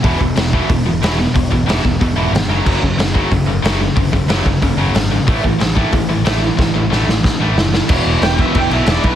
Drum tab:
CC |--------|--------|x-------|--------|
HH |o-o-o-o-|o-o-o-o-|--o-o-o-|o-o-o-o-|
SD |--o---o-|--o---o-|--o---o-|--o---o-|
BD |oo-oo---|oo-oo---|oo-oo---|oo-oo---|

CC |--------|--------|xxxxxxxx|
HH |o-o-o-o-|--------|--------|
SD |--o---o-|o-ooo-oo|--o---o-|
BD |oo-oo---|o---o---|o--oo--o|